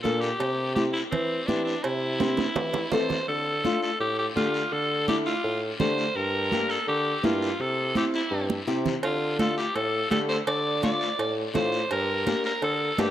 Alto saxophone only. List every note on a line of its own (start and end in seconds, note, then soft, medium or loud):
0.02 0.22 A4 medium
0.21 0.75 G4 loud
0.75 0.84 G4 medium
0.93 1.01 E4 medium
1.11 1.48 C4 medium
1.47 1.64 D4 medium
1.65 1.84 D4 medium
1.83 2.91 E4 medium
2.92 3.26 C5 medium
3.28 3.78 A4 loud
3.83 3.99 A4 loud
4.00 4.17 G4 loud
4.19 4.27 G4 medium
4.37 4.74 F4 medium
4.73 5.08 A4 loud
5.08 5.16 G4 medium
5.26 5.60 F4 loud
5.80 6.17 C5 loud
6.16 6.71 A#4 loud
6.70 6.87 A4 medium
6.88 7.26 G4 loud
7.25 7.62 F4 medium
7.61 7.96 A4 loud
7.97 8.05 G4 medium
8.15 8.48 E4 medium
9.04 9.37 F4 medium
9.39 9.56 A4 loud
9.57 9.77 G4 loud
9.75 10.10 A4 loud
10.11 10.19 A4 loud
10.29 10.37 C5 loud
10.47 10.81 D5 loud
10.83 11.33 D5 loud
11.55 11.88 C5 loud
11.92 12.42 A#4 loud
12.46 12.62 A#4 loud
12.63 13.01 A4 loud
13.00 13.11 G4 medium